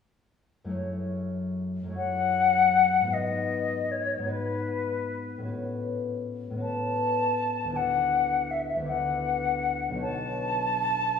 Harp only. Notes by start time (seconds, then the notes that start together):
0.64 F#2 A3 E4 G#4
0.71 C#5
1.83 F#2 A3
1.88 E4 G#4
1.93 C#5
3.00 G#2 B3
3.05 D#4 F#4
3.10 B4
4.18 G#2 B3
4.24 D#4 F#4
4.28 B4
5.38 A2 B3
5.43 C#4 F#4
5.48 B4
6.50 A2 B3
6.55 C#4 F#4
6.60 B4
7.64 D2 B3
7.69 D4 E4
7.74 D5
8.76 D2 B3
8.81 D4 E4
8.86 D5
9.89 B1 B3
9.94 D4 F#4
9.98 C#5